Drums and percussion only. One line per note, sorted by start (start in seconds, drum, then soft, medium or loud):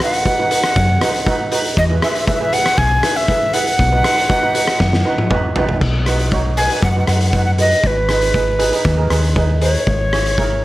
0.00 cross-stick medium
0.00 closed hi-hat medium
0.13 closed hi-hat medium
0.25 kick medium
0.25 closed hi-hat medium
0.51 closed hi-hat medium
0.64 cross-stick medium
0.64 closed hi-hat medium
0.76 kick loud
0.76 closed hi-hat medium
1.01 cross-stick medium
1.01 closed hi-hat medium
1.14 closed hi-hat medium
1.26 kick medium
1.26 closed hi-hat medium
1.52 closed hi-hat medium
1.65 closed hi-hat medium
1.77 kick medium
1.77 closed hi-hat medium
2.02 cross-stick medium
2.02 closed hi-hat medium
2.15 closed hi-hat medium
2.27 kick loud
2.27 closed hi-hat medium
2.53 closed hi-hat medium
2.66 cross-stick medium
2.66 closed hi-hat medium
2.78 kick loud
2.78 closed hi-hat medium
3.03 cross-stick medium
3.03 closed hi-hat loud
3.16 closed hi-hat medium
3.28 kick medium
3.28 closed hi-hat medium
3.53 closed hi-hat loud
3.67 closed hi-hat medium
3.79 kick loud
3.79 closed hi-hat medium
4.04 cross-stick medium
4.04 closed hi-hat medium
4.18 closed hi-hat medium
4.30 kick medium
4.30 closed hi-hat medium
4.55 closed hi-hat medium
4.68 cross-stick medium
4.68 closed hi-hat medium
4.80 kick loud
4.80 snare medium
4.93 snare medium
5.18 high tom medium
5.30 kick medium
5.30 mid tom medium
5.56 floor tom loud
5.69 floor tom medium
5.81 kick medium
5.81 crash medium
6.06 cross-stick medium
6.06 closed hi-hat medium
6.19 closed hi-hat medium
6.31 kick medium
6.31 closed hi-hat medium
6.57 closed hi-hat medium
6.70 closed hi-hat medium
6.82 kick loud
6.82 closed hi-hat medium
7.07 cross-stick medium
7.07 closed hi-hat medium
7.21 closed hi-hat medium
7.33 kick medium
7.33 closed hi-hat medium
7.58 closed hi-hat medium
7.71 closed hi-hat medium
7.83 kick medium
7.83 closed hi-hat medium
8.09 cross-stick medium
8.09 closed hi-hat medium
8.21 closed hi-hat medium
8.34 kick medium
8.34 closed hi-hat medium
8.60 closed hi-hat medium
8.73 closed hi-hat medium
8.85 kick loud
8.85 closed hi-hat medium
9.10 cross-stick medium
9.10 closed hi-hat medium
9.24 closed hi-hat medium
9.36 kick medium
9.36 closed hi-hat medium
9.61 closed hi-hat medium
9.75 closed hi-hat medium
9.87 kick medium
9.87 closed hi-hat soft
10.13 cross-stick medium
10.13 closed hi-hat medium
10.26 closed hi-hat medium
10.38 kick medium
10.38 closed hi-hat medium